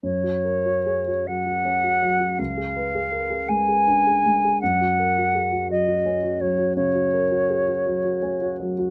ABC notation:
X:1
M:12/8
L:1/16
Q:3/8=54
K:F#
V:1 name="Flute"
c6 f6 e6 g6 | f6 d4 c2 c8- c2 z2 |]
V:2 name="Grand piano"
F,, F A F G F F, F C F F, F C,, G B G A G G, G =D G G, G | F,, F A F G F F, F C F F, F C, F A F G F F, F C F F, F |]